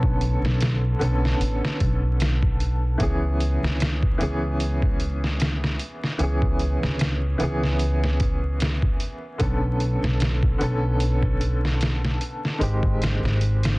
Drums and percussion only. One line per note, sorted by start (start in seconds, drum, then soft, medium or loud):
0.03 kick medium
0.21 closed hi-hat medium
0.45 snare soft
0.61 snare loud
0.61 closed hi-hat medium
1.01 closed hi-hat medium
1.25 snare soft
1.41 closed hi-hat medium
1.65 snare medium
1.80 kick medium
1.80 closed hi-hat medium
2.20 snare loud
2.20 closed hi-hat medium
2.43 kick medium
2.60 closed hi-hat medium
3.00 kick medium
3.00 closed hi-hat medium
3.40 closed hi-hat medium
3.64 snare medium
3.80 snare loud
3.80 closed hi-hat medium
4.03 kick medium
4.21 closed hi-hat medium
4.60 closed hi-hat medium
4.82 kick medium
5.00 closed hi-hat medium
5.24 snare soft
5.40 snare loud
5.40 closed hi-hat medium
5.64 snare soft
5.79 closed hi-hat medium
6.04 snare soft
6.19 closed hi-hat medium
6.42 kick medium
6.59 closed hi-hat medium
6.83 snare medium
6.99 snare loud
6.99 closed hi-hat medium
7.40 closed hi-hat medium
7.63 snare soft
7.79 closed hi-hat medium
8.04 snare soft
8.20 kick medium
8.20 closed hi-hat medium
8.60 snare loud
8.60 closed hi-hat medium
8.82 kick medium
9.00 closed hi-hat medium
9.40 kick medium
9.40 closed hi-hat medium
9.80 closed hi-hat medium
10.04 snare medium
10.20 snare loud
10.20 closed hi-hat medium
10.43 kick medium
10.61 closed hi-hat medium
11.00 closed hi-hat medium
11.22 kick medium
11.41 closed hi-hat medium
11.65 snare soft
11.81 snare loud
11.81 closed hi-hat medium
12.05 snare soft
12.21 closed hi-hat medium
12.45 snare soft
12.61 closed hi-hat medium
12.83 kick medium
13.02 snare loud
13.02 closed hi-hat medium
13.25 snare soft
13.41 closed hi-hat medium
13.63 snare loud
13.63 closed hi-hat medium